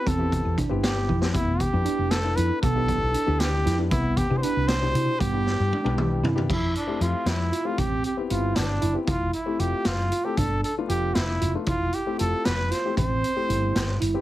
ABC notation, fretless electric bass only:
X:1
M:5/8
L:1/16
Q:1/4=116
K:Flyd
V:1 name="Fretless electric bass" clef=bass
E,,3 E,, z G,,,3 F,,2 | F,,,2 z F,, z F,,,3 F,, z | B,,,3 B,,, z D,,3 F,,2 | C,,2 z C, z C,,3 C, z |
G,,3 G,, z B,,,3 C,2 | F,,2 z2 F,, z F,,2 z2 | A,,,2 z2 G,,,2 G,,,2 _G,,, z | F,,,2 z2 F,,, z _G,,,2 z2 |
G,,,2 z2 F,,,2 F,,,2 F,,, z | F,,,2 z2 F,,, z F,,,2 z2 | A,,,2 z2 G,,,2 G,,,2 G,,, z |]